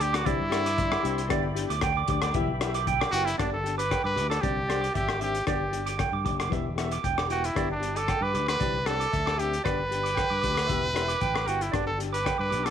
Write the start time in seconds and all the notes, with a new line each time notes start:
Already playing: D5 G5 B5
0.00 D2 D4 G4 D6, closed hi-hat
0.13 F#4 D6, cross-stick, closed hi-hat
0.24 C2 E3 C4 D4 E4 G4 D5 E5 C6, kick, closed hi-hat
0.40 G2
0.49 C4 D4 G4 D5, cross-stick, closed hi-hat
0.66 D6, closed hi-hat
0.78 E5, kick, closed hi-hat
0.92 D6, cross-stick
1.03 C2 C4 D4 G4 E5, closed hi-hat
1.18 closed hi-hat
1.29 G1 B3 D4 G4 D5 G5 B5, kick, cross-stick, closed hi-hat
1.56 D4 G4, closed hi-hat
1.69 D2 D6, closed hi-hat
1.81 G5, kick, cross-stick, closed hi-hat
1.97 D6
2.08 D2 D4 G4 D6, kick, closed hi-hat
2.22 D6, cross-stick, closed hi-hat
2.33 E1 E3 B3 E4 G4 E5 G5 B5, kick, closed hi-hat
2.47 B1
2.61 B3 E4 G4 E5, cross-stick, closed hi-hat
2.74 D6, closed hi-hat
2.87 G5, kick, closed hi-hat
3.01 D6, cross-stick
3.11 F#1 B3 E4 F#4 G4 G5, closed hi-hat
3.25 E4, closed hi-hat
3.38 G1 B3 D4 G4 D5, kick, cross-stick, closed hi-hat
3.52 A4
3.64 D4 G4, closed hi-hat
3.78 B4 D6, closed hi-hat
3.91 G5, kick, cross-stick, closed hi-hat
4.04 G2 B4 D6
4.16 D2 D4 G4 D6, closed hi-hat
4.30 A4 D6, cross-stick, closed hi-hat
4.41 C2 C4 D4 G4 D5, muted nylon-string guitar stroke, kick, closed hi-hat
4.68 D4 G4 D5, cross-stick, closed hi-hat
4.73 C4
4.82 D6, closed hi-hat
4.94 G#1 G4 E5, kick, closed hi-hat
5.08 D6, cross-stick
5.19 C4 D4 G4 E5, closed hi-hat
5.35 closed hi-hat
5.47 G1 B3 D4 G4 D5, kick, cross-stick, closed hi-hat
5.73 D4 G4, closed hi-hat
5.86 D6, closed hi-hat
5.99 G5, kick, cross-stick, closed hi-hat
6.12 G2 D6
6.25 F#1 D4 G4 D6, kick, closed hi-hat
6.40 D6, cross-stick, closed hi-hat
6.49 E1 E3 B3 E4 G4 E5, kick, closed hi-hat
6.76 B3 E4 G4 E5, cross-stick, closed hi-hat
6.91 D6, closed hi-hat
7.04 E1 G5, kick, closed hi-hat
7.18 D6, cross-stick
7.28 B3 E4 F#4 G4 G5, closed hi-hat
7.44 E4, closed hi-hat
7.55 G1 B3 D4 G4 D5, kick, cross-stick, closed hi-hat
7.71 D4
7.80 D4 G4, closed hi-hat
7.96 A4 D6, closed hi-hat
8.08 G5, kick, cross-stick, closed hi-hat
8.21 G2 B4 D6
8.33 D2 D4 G4 D6, closed hi-hat
8.48 B4 D6, cross-stick, closed hi-hat
8.59 C2 E3 C4 D4 G4 D5, kick, closed hi-hat
8.86 C4 D4 G4 A4 D5, cross-stick, closed hi-hat
9.00 D6, closed hi-hat
9.13 D2 E5, kick, closed hi-hat
9.26 D6, cross-stick
9.37 C4 D4 G4 E5, closed hi-hat
9.53 closed hi-hat
9.64 G1 B3 D4 G4 B4 D5, kick, cross-stick, closed hi-hat
9.91 D4 G4, closed hi-hat
10.03 D6, closed hi-hat
10.15 G5, kick, cross-stick, closed hi-hat
10.30 G2 D6
10.41 D2 G4 D6, kick, closed hi-hat
10.46 D4
10.55 D6, cross-stick, closed hi-hat
10.67 E1 E3 B3 E5, kick, closed hi-hat
10.71 E4 G4
10.94 B3 E4 G4 E5, cross-stick, closed hi-hat
11.08 D6, closed hi-hat
11.21 A1 G5, kick, closed hi-hat
11.34 D6, cross-stick
11.46 G1 B3 E4 F#4 G4 G5, closed hi-hat
11.61 E4, closed hi-hat
11.72 G1 B3 D4 G4 D5, kick, cross-stick, closed hi-hat
11.87 A4
11.98 D4 G4, closed hi-hat
12.13 B4 D6, closed hi-hat
12.25 G5, kick, cross-stick, closed hi-hat
12.38 G2 B4 D6
12.50 B1 G4 D6, closed hi-hat
12.54 D4
12.63 A4 D6, cross-stick, closed hi-hat